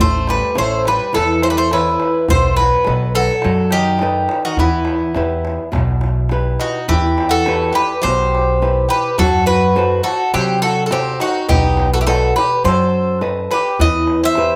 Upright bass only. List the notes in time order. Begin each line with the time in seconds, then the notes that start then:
0.00 A1
0.57 A1
1.16 E2
2.31 B1
2.87 B1
3.45 F#2
4.58 E2
5.16 E2
5.75 B1
6.91 E2
8.04 B1
9.19 F#2
10.34 C3
11.50 B1
12.65 F#2
13.80 E2